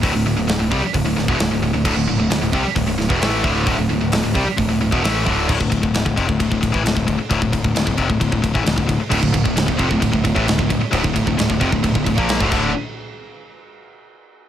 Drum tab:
CC |----------------|x---------------|----------------|x---------------|
RD |----------------|----------------|----------------|--x-x-x-x-x-x-x-|
HH |o---o---o---o---|----o---o---o---|o---o---o---o---|----------------|
SD |----o-----o-o---|----o-----o-o---|----o-------o---|----o-------o---|
BD |o-----o-o--o----|o-----o-o--o--o-|o-----o-o--o--o-|oooo-ooooooo-oo-|

CC |----------------|x---------------|--------------x-|----------------|
RD |x-x-x-x-x-x-x-x-|--x-x-x-x-x-x-x-|x-x-x-x-x-x-x---|----------------|
HH |----------------|----------------|----------------|----------------|
SD |----o-------o---|----o-------o---|----o-------o---|----------------|
BD |oooo-ooooooo-oo-|oooo-ooooooo-oo-|oooo-ooooooo-oo-|----------------|